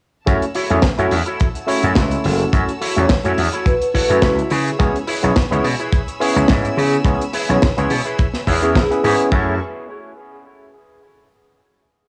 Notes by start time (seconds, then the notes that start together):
0.26 F#2 A3 C#4 E4 F#4 C#5 F#5 A5 E6, kick, closed hi-hat
0.42 closed hi-hat
0.54 E4 F#4 A4 C#5, open hi-hat
0.70 E2 A3 C#4 E4 F#4 C#5, closed hi-hat
0.82 kick, snare, closed hi-hat
0.98 F#2 A3 C#4 E4 F#4 A4 C#5, closed hi-hat
1.11 E2, open hi-hat
1.26 E4 F#4 A4 C#5, closed hi-hat
1.40 kick, closed hi-hat
1.55 closed hi-hat
1.67 A3 C#4 E4 F#4 A4 C#5, open hi-hat
1.84 F#2, closed hi-hat
1.95 C#2, kick, snare, closed hi-hat
2.11 closed hi-hat
2.24 F#1 A4, open hi-hat
2.40 closed hi-hat
2.53 F#2 A3 C#4 E4 F#4 C#5, kick, closed hi-hat
2.69 closed hi-hat
2.81 E4 F#4 A4 C#5, open hi-hat
2.96 E2 A3 C#4 E4 F#4 C#5, closed hi-hat
3.09 kick, snare, closed hi-hat
3.24 F#2 A3 C#4 E4 F#4 A4 C#5, closed hi-hat
3.38 E2, open hi-hat
3.53 E4 F#4 A4 C#5, closed hi-hat
3.66 B4, kick, closed hi-hat
3.82 closed hi-hat
3.94 E4 F#4 A4 B4 C#5 F#5, kick, open hi-hat
4.10 F#2 A3 C#4 E4 F#4 B4 C#5, closed hi-hat
4.22 C#2 E5, kick, snare, closed hi-hat
4.39 closed hi-hat
4.50 C#3 E4 G#4 B4 C#5 G#5 B5 E6, open hi-hat
4.68 closed hi-hat
4.79 C#2 B3 C#4 E4 G#4 C#5, kick, closed hi-hat
4.96 closed hi-hat
5.07 E4 G#4 B4 C#5, open hi-hat
5.23 B1 B3 C#4 E4 G#4 C#5, closed hi-hat
5.36 kick, snare, closed hi-hat
5.51 C#2 B3 C#4 E4 G#4 B4 C#5, closed hi-hat
5.64 B2, open hi-hat
5.79 E4 G#4 B4 C#5, closed hi-hat
5.93 kick, closed hi-hat
6.08 closed hi-hat
6.20 B3 C#4 E4 G#4 B4 C#5, open hi-hat
6.36 C#2, closed hi-hat
6.48 G#2, kick, snare, closed hi-hat
6.65 closed hi-hat
6.77 C#3 G#4, open hi-hat
6.93 closed hi-hat
7.05 C#2 B3 C#4 E4 G#4 C#5, kick, closed hi-hat
7.22 closed hi-hat
7.33 E4 G#4 B4 C#5, open hi-hat
7.49 B1 B3 C#4 E4 G#4 C#5, closed hi-hat
7.62 kick, snare, closed hi-hat
7.77 C#2 B3 C#4 E4 G#4 B4 C#5, closed hi-hat
7.90 B2, open hi-hat
8.05 E4 G#4 B4 C#5, closed hi-hat
8.19 kick, closed hi-hat
8.34 snare, closed hi-hat
8.47 E2 E4 G#4 B4 C#5, kick, open hi-hat
8.62 B3 C#4 E4 G#4 C#5, closed hi-hat
8.75 kick, snare, closed hi-hat
8.91 B3 C#4 E4 G#4 B4, closed hi-hat
9.04 G#2 B3 C#4 E4 G#4 C#5, open hi-hat
9.20 closed hi-hat
9.31 F#2 A3 C#4 E4 F#4 A4 C#5 E5 A5 C#6, kick